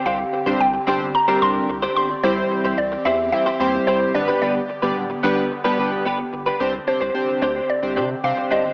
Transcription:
<<
  \new Staff \with { instrumentName = "Synth pluck" } { \time 4/4 \key g \phrygian \tempo 4 = 110 f''4 g''4 bes''8 c'''4 c'''8 | c''4 d''8 e''8 e''4 c''8 d''8 | d''2. r4 | r8 c''4 c''8 d''4 f''8 ees''8 | }
  \new Staff \with { instrumentName = "Clean electric guitar" } { \time 4/4 \key g \phrygian <c' d' g' c''>16 r8 <c' d' g' c''>16 r8 <c' d' g' c''>16 r8 <c' d' g' c''>16 <c' d' g' c''>16 r8 <c' d' g' c''>16 <c' d' g' c''>16 r16 | <c' e' g' c''>16 r8 <c' e' g' c''>16 r8 <c' e' g' c''>16 r8 <c' e' g' c''>16 <c' e' g' c''>16 r16 <c' e' g' c''>16 r8 <b d' g' b'>16 | <b d' g' b'>16 r8 <b d' g' b'>16 r8 <b d' g' b'>16 r8 <b d' g' b'>16 <b d' g' b'>16 r16 <b d' g' b'>16 r8 <b d' g' b'>16 | <c' d' g' c''>16 r8 <c' d' g' c''>16 r8 <c' d' g' c''>16 <c' d' g' c''>16 r8 <c' d' g' c''>16 r8. <c' d' g' c''>16 <c' d' g' c''>16 | }
  \new Staff \with { instrumentName = "Analog polysynth" } { \time 4/4 \key g \phrygian r8 <g' c''>16 <g c' d' g' c''>16 r8 <g c' d' g' c''>16 r8 <g c' d' g' bes'>8. r8. <g' d''>16 | <g c' e' g' c''>4 r4 <g c' e' g' c''>16 r16 <g c' e' g' c''>4 <g b d' g' b'>8~ | <g b d' g' b'>16 r16 <g' d''>16 <g b d' g' d''>16 r8 <g b d' g' b'>16 r8 <g b d' g' b'>8. r8. <g' b'>16 | <c' d' g' c''>16 r16 <c' d' g' c''>16 r16 <c' d' g' c''>8 r8. <c' d' g' c''>16 r8 <c' d' g' c''>8. r16 | }
  \new Staff \with { instrumentName = "Analog synth pad" } { \time 4/4 \key g \phrygian << { g'1 | g'1~ | g'1 | g'1 | } \\ { <d c'>1 | <e c'>2.~ <e c'>8 <d b>8~ | <d b>1 | <d c'>1 | } >> }
  \new Staff \with { instrumentName = "Sub bass" } { \clef bass \time 4/4 \key g \phrygian c,8 r16 c,16 c,8 g,,8. r16 c,8 c,8 g,,8 | c,8 r16 c,16 c,8 e,8. r16 ees,8 c,8 g,,8 | g,,8 r16 g,,16 d,,8 g,,8. r16 g,,8 g,,8 g,,8 | c,8 r16 c,16 r8 d,8 r16 c,16 c8 c16 r16 c,16 g,,16 | }
>>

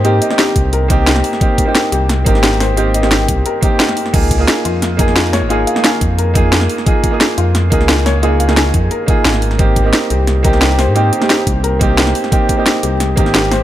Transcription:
<<
  \new Staff \with { instrumentName = "Felt piano" } { \time 4/4 \key aes \major \tempo 4 = 176 g'16 r16 ees''8 g'8 r8 bes'8 r4. | r4. g'16 r8. bes'8 g'8 c''8 | g'16 r16 ees''8 g'8 r8 bes'8 r4. | r4. f'16 r8. bes'8 f'8 des''8 |
f'16 r16 f''8 aes''8 r8 bes'8 r4. | r4. f'16 r8. bes'8 f'8 des''8 | f'16 r16 f''8 aes''8 r8 bes'8 r4. | r4. g'16 r8. bes'8 g'8 c''8 |
g'16 r16 g'8 g''8 r8 bes'8 r4. | r4. g'16 r8. bes'8 g'8 c''8 | }
  \new Staff \with { instrumentName = "Grand piano" } { \time 4/4 \key aes \major <bes c' ees' g'>8. <bes c' ees' g'>4.~ <bes c' ees' g'>16 <bes c' ees' g'>4. | <bes c' ees' g'>8. <bes c' ees' g'>4.~ <bes c' ees' g'>16 <bes c' ees' g'>4. | <bes c' ees' g'>8. <bes c' ees' g'>4.~ <bes c' ees' g'>16 <bes c' ees' g'>4. | <bes ees' f' aes'>8. <bes ees' f' aes'>4.~ <bes ees' f' aes'>16 <bes ees' f' aes'>4. |
<bes ees' f' aes'>8. <bes ees' f' aes'>4.~ <bes ees' f' aes'>16 <bes ees' f' aes'>4. | <bes ees' f' aes'>8. <bes ees' f' aes'>4.~ <bes ees' f' aes'>16 <bes ees' f' aes'>4. | <bes ees' f' aes'>8. <bes ees' f' aes'>4.~ <bes ees' f' aes'>16 <bes ees' f' aes'>4. | <bes c' ees' g'>8. <bes c' ees' g'>4.~ <bes c' ees' g'>16 <bes c' ees' g'>4. |
<bes c' ees' g'>8. <bes c' ees' g'>4.~ <bes c' ees' g'>16 <bes c' ees' g'>4. | <bes c' ees' g'>8. <bes c' ees' g'>4.~ <bes c' ees' g'>16 <bes c' ees' g'>4. | }
  \new Staff \with { instrumentName = "Analog synth bass" } { \clef bass \time 4/4 \key aes \major aes,8 r4 c,2 r8 | r4. c,4 aes,,4.~ | aes,,4. c,8 r2 | des,4 r8 f,2~ f,16 aes,,16~ |
aes,,8 r4 f,2 r8 | r4. f,4 des,4.~ | des,4. f,8 r4 aes,,4 | aes,,4 r8 c,2~ c,16 aes,16~ |
aes,8 r4 c,2 r8 | r4. c,4 aes,,4. | }
  \new DrumStaff \with { instrumentName = "Drums" } \drummode { \time 4/4 hh8 hh16 sn16 <hh sn>8 <hh bd>8 hh8 <hh bd>8 <hh sn>16 sn16 hho16 sn16 | <hh bd>8 <hh bd>8 <hh sn>8 hh8 <hh sn>8 <hh bd>16 sn16 <hh sn>8 <hho sn>8 | hh8 hh16 sn16 <hh sn>8 <hh bd>8 hh8 <hh bd>8 <hh sn>16 sn16 hho16 sn16 | <cymc hh bd>8 <hh bd>8 <hh sn>8 hh8 <hh sn>8 <hh bd>16 sn16 <hh sn>8 <hho sn>8 |
hh8 hh16 sn16 <hh sn>8 <hh bd>8 hh8 <hh bd>8 <hh sn>16 sn16 hho16 sn16 | <hh bd>8 <hh bd>8 <hh sn>8 hh8 <hh sn>8 <hh bd>16 sn16 <hh sn>8 <hho sn>8 | hh8 hh16 sn16 <hh sn>8 <hh bd>8 hh8 <hh bd>8 <hh sn>16 sn16 hho16 sn16 | <hh bd>8 <hh bd>8 <hh sn>8 hh8 <hh sn>8 <hh bd>16 sn16 <hh sn>8 <hho sn>8 |
hh8 hh16 sn16 <hh sn>8 <hh bd>8 hh8 <hh bd>8 <hh sn>16 sn16 hho16 sn16 | <hh bd>8 <hh bd>8 <hh sn>8 hh8 <hh sn>8 <hh bd>16 sn16 <hh sn>8 <hho sn>8 | }
>>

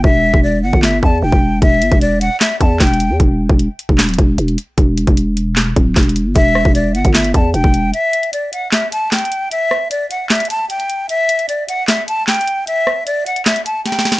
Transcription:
<<
  \new Staff \with { instrumentName = "Flute" } { \time 4/4 \key e \minor \tempo 4 = 152 e''4 d''8 fis''8 e''8 a''8 g''4 | e''4 d''8 fis''8 e''8 a''8 g''4 | r1 | r1 |
e''4 d''8 fis''8 e''8 a''8 g''4 | e''4 d''8 fis''8 e''8 a''8 g''4 | e''4 d''8 fis''8 e''8 a''8 g''4 | e''4 d''8 fis''8 e''8 a''8 g''4 |
e''4 d''8 fis''8 e''8 a''8 g''4 | }
  \new Staff \with { instrumentName = "808-style bass" } { \clef bass \time 4/4 \key e \minor e,,8. e,,8. g,,16 g,,8. e,8 e,,16 e,,8. | e,,8 g,,16 e,,4 r8. e,8 e,,8. e,16 | e,,8. e,,8 r8 e,,8 d,,16 e,,8 e,,8 r8 | e,,8. e,,4.~ e,,16 d,,8 e,,8. g,,16 |
e,,8. e,,8. g,,16 g,,8. e,8 e,,16 e,,8. | r1 | r1 | r1 |
r1 | }
  \new DrumStaff \with { instrumentName = "Drums" } \drummode { \time 4/4 bd8. bd16 r8. bd16 <hc sn>8 bd8 r16 bd8. | <hh bd>8 hh16 <hh bd>16 hh8 hh8 <hc hh sn>8 <hh bd>8 \tuplet 3/2 { <hc hh bd sn>16 hh16 hh16 hh16 r16 r16 } | <hh bd>8. bd16 hh8 hh16 bd16 <hc hh sn>32 hh32 hh32 hh32 <hh bd>8 hh16 hh16 hh8 | <hh bd>8 hh16 <hh bd>16 hh8 hh8 <hc hh sn>8 <hh bd>8 \tuplet 3/2 { <hc hh bd sn>16 hh16 hh16 hh16 r16 r16 } |
<hh bd>8 ss16 bd16 hh8 hh16 <hh bd>16 <hc hh sn>16 hh16 <hh bd>8 hh16 bd16 hh8 | hh8 hh16 hh16 hh8 hh8 <hc hh sn>8 hh8 \tuplet 3/2 { <hc hh sn>16 hh16 hh16 hh16 r16 r16 } | hh8 ss8 hh8 hh8 <hc hh sn>32 hh32 hh32 hh32 hh8 hh16 hh16 hh8 | hh8 hh16 hh16 hh8 hh8 <hc hh sn>8 hh8 \tuplet 3/2 { <hc hh sn>16 hh16 hh16 hh16 r16 r16 } |
hh8 ss8 hh8 hh16 hh16 <hc hh sn>16 hh16 hh8 \tuplet 3/2 { <hh sn>16 sn16 sn16 <hh sn>16 sn16 r16 } | }
>>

